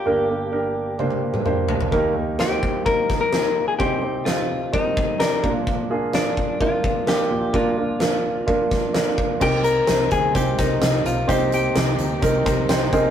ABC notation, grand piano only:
X:1
M:4/4
L:1/8
Q:1/4=128
K:Cm
V:1 name="Grand piano"
[B,DGB] [B,DGB] [B,DGB]2 [B,DGc]2 [B,DGc]2 | [B,EGB] [B,EGB] [B,EGc]2 [B,EGB]2 [B,EFGB]2 | [CEGc] [CEGc] [CEGc]2 [CEGB]2 [CEGd] [B,DFB]- | [B,DFB] [B,DFA] [B,DFB]2 [B,DFB]2 [B,DFB]2 |
[B,DFB] [B,DFB] [B,DFB]2 [B,DFB]2 [B,DFB]2 | [CEGB]2 [CEGc]2 [CEGc] [CEGB] [CEGc]2 | [CEGc]2 [CEGc]2 [CEGB] [CEGBb] [CEGcg] [CEABe] |]
V:2 name="Grand piano" clef=bass
[G,,,G,,]8 | [E,,E,]8 | [C,,C,]6- [C,,C,] [B,,,B,,]- | [B,,,B,,]6- [B,,,B,,] [B,,,B,,]- |
[B,,,B,,]6- [B,,,B,,] z | C,3 z4 z | C,3 z4 C, |]